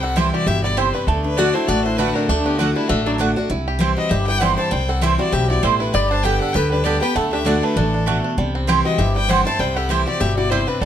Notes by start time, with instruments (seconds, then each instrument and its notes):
Already playing: upright bass C2, steel-string acoustic guitar C3, five-string banjo G3 G4
0.02 five-string banjo C4, resonator guitar played with a steel bar A4, fiddle F#5
0.16 steel-string acoustic guitar E3 G3 C4 E4, mandolin C4 E4 C5 G5, five-string banjo E4, resonator guitar played with a steel bar G4, fiddle E5
0.34 resonator guitar played with a steel bar F#4, five-string banjo G4, fiddle D5
0.47 upright bass G1, steel-string acoustic guitar B2, five-string banjo E4, resonator guitar played with a steel bar G4, fiddle E5
0.64 five-string banjo G3, resonator guitar played with a steel bar F#4, fiddle D5
0.77 steel-string acoustic guitar C3, mandolin C4 E4 C5 G5, resonator guitar played with a steel bar E4, five-string banjo G4, fiddle C5
0.94 five-string banjo G3, resonator guitar played with a steel bar D4, fiddle B4
1.07 upright bass D2, steel-string acoustic guitar D3, five-string banjo A3, resonator guitar played with a steel bar D4, fiddle A4
1.24 resonator guitar played with a steel bar D4, fiddle B4
1.37 steel-string acoustic guitar D3 A3 D4 F#4, mandolin A3 F#4 D5 F#5, five-string banjo D4, resonator guitar played with a steel bar F#4, fiddle D5
1.54 five-string banjo A3, steel-string acoustic guitar D4 F#4, resonator guitar played with a steel bar E4, fiddle C5
1.68 upright bass A1, steel-string acoustic guitar A2, five-string banjo D4, resonator guitar played with a steel bar F#4, fiddle D5
1.84 five-string banjo D4, resonator guitar played with a steel bar E4, fiddle C5
1.97 steel-string acoustic guitar D3 A3 D4 F#4, mandolin A3 F#4 D5 F#5, five-string banjo A3, resonator guitar played with a steel bar D4, fiddle B4
2.14 resonator guitar played with a steel bar C4, five-string banjo D4, fiddle A#4
2.28 upright bass D2, steel-string acoustic guitar D3, five-string banjo A3, resonator guitar played with a steel bar D4, fiddle A4
2.44 resonator guitar played with a steel bar B3, five-string banjo D4, fiddle G4
2.58 steel-string acoustic guitar D3 A3 D4 F#4, mandolin A3 F#4 D5 F#5, resonator guitar played with a steel bar A3, five-string banjo D4, fiddle F#4
2.75 resonator guitar played with a steel bar G3, five-string banjo D4, fiddle E4
2.88 upright bass A1, steel-string acoustic guitar A2, resonator guitar played with a steel bar A3, five-string banjo D4, fiddle F#4
3.06 resonator guitar played with a steel bar F#3, five-string banjo A3, fiddle D4
3.18 steel-string acoustic guitar D3 A3 D4 F#4, mandolin A3 F#4 D5 F#5, five-string banjo D4
3.36 five-string banjo D4, steel-string acoustic guitar D4 F#4
3.50 upright bass C2, steel-string acoustic guitar C3, five-string banjo E4
3.68 five-string banjo G4
3.79 steel-string acoustic guitar E3 G3 C4 E4, mandolin C4 E4 C5 G5, five-string banjo C4
3.97 five-string banjo E4, resonator guitar played with a steel bar F#4, fiddle D#5
4.10 upright bass G1, steel-string acoustic guitar G2, five-string banjo G3, resonator guitar played with a steel bar G4, fiddle E5
4.27 five-string banjo E4, resonator guitar played with a steel bar B4, fiddle G5
4.40 steel-string acoustic guitar E3 G3 C4 E4, five-string banjo G3, mandolin C4 E4 C5 G5, resonator guitar played with a steel bar C5, fiddle F#5
4.57 five-string banjo C4, resonator guitar played with a steel bar C5, fiddle A5
4.71 upright bass C2, steel-string acoustic guitar C3, five-string banjo G3, resonator guitar played with a steel bar C5, fiddle G5
4.89 five-string banjo C4, resonator guitar played with a steel bar A4, fiddle F#5
5.01 steel-string acoustic guitar E3 G3 C4 E4, mandolin C4 E4 C5 G5, five-string banjo E4, resonator guitar played with a steel bar G4, fiddle E5
5.18 five-string banjo G3, steel-string acoustic guitar C4 E4, resonator guitar played with a steel bar F#4, fiddle D5
5.32 upright bass B1, steel-string acoustic guitar B2, five-string banjo C4, resonator guitar played with a steel bar G4, fiddle E5
5.50 five-string banjo E4, resonator guitar played with a steel bar F#4, fiddle D5
5.63 upright bass A1, steel-string acoustic guitar A2, five-string banjo G3, mandolin C4 E4 C5 G5, resonator guitar played with a steel bar E4, fiddle C5
5.80 resonator guitar played with a steel bar D4, five-string banjo E4, fiddle B4
5.93 upright bass G1, steel-string acoustic guitar G2, five-string banjo G3, resonator guitar played with a steel bar D5, fiddle B5
6.10 five-string banjo D4, resonator guitar played with a steel bar C5, fiddle A5
6.23 steel-string acoustic guitar D3 G3 B3 G4, mandolin B3 G4 D5 G5, five-string banjo G4, resonator guitar played with a steel bar B4, fiddle G5
6.39 five-string banjo D4, resonator guitar played with a steel bar A4, fiddle F#5
6.53 upright bass D2, steel-string acoustic guitar D3, five-string banjo G4, resonator guitar played with a steel bar B4, fiddle G5
6.71 five-string banjo G3, resonator guitar played with a steel bar D4, fiddle B4
6.84 steel-string acoustic guitar D3 G3 B3 G4, mandolin B3 G4 D5 G5, five-string banjo D4, resonator guitar played with a steel bar G4, fiddle D5
7.01 steel-string acoustic guitar B3 G4, five-string banjo G4, resonator guitar played with a steel bar B4, fiddle G5
7.16 upright bass D2, steel-string acoustic guitar D3, five-string banjo A3, resonator guitar played with a steel bar A4, fiddle F#5
7.33 five-string banjo D4, resonator guitar played with a steel bar G4, fiddle E5
7.45 steel-string acoustic guitar D3 A3 D4 F#4, mandolin A3 F#4 D5 F#5, five-string banjo D4, resonator guitar played with a steel bar F#4, fiddle D5
7.63 five-string banjo A3, resonator guitar played with a steel bar D4, fiddle B4
7.76 upright bass A1, steel-string acoustic guitar E3, resonator guitar played with a steel bar D4, five-string banjo D4, fiddle A4
7.94 five-string banjo D4
8.06 steel-string acoustic guitar B2, mandolin A3 F#4 D5 F#5, five-string banjo A3
8.24 five-string banjo D4
8.37 upright bass C2, steel-string acoustic guitar C3, five-string banjo G3
8.55 five-string banjo C4
8.67 steel-string acoustic guitar E3 G3 C4 E4, mandolin C4 E4 C5 G5, five-string banjo G4
8.85 five-string banjo C4, resonator guitar played with a steel bar F#4, fiddle D#5
8.98 upright bass G1, steel-string acoustic guitar G2, five-string banjo E4, resonator guitar played with a steel bar G4, fiddle E5
9.16 five-string banjo G3, resonator guitar played with a steel bar B4, fiddle G5
9.28 steel-string acoustic guitar E3 G3 C4 E4, mandolin C4 E4 C5 G5, five-string banjo C4, resonator guitar played with a steel bar C5, fiddle F#5
9.45 steel-string acoustic guitar E4, five-string banjo E4, resonator guitar played with a steel bar C5, fiddle A5
9.59 upright bass C2, steel-string acoustic guitar C3, five-string banjo G3, resonator guitar played with a steel bar C5, fiddle G5
9.76 five-string banjo G4, resonator guitar played with a steel bar A4, fiddle F#5
9.89 steel-string acoustic guitar E3 G3 C4 E4, mandolin C4 E4 C5 G5, five-string banjo C4, resonator guitar played with a steel bar G4, fiddle E5
10.06 steel-string acoustic guitar C4 E4, resonator guitar played with a steel bar F#4, five-string banjo G4, fiddle D5
10.20 upright bass G1, steel-string acoustic guitar B2, five-string banjo G3, resonator guitar played with a steel bar G4, fiddle E5
10.37 five-string banjo E4, resonator guitar played with a steel bar F#4, fiddle D5
10.50 steel-string acoustic guitar C3, five-string banjo G3, mandolin C4 E4 C5 G5, resonator guitar played with a steel bar E4, fiddle C5
10.67 five-string banjo C4, resonator guitar played with a steel bar D4, fiddle B4
10.81 upright bass D2, five-string banjo G3, resonator guitar played with a steel bar D4, fiddle A4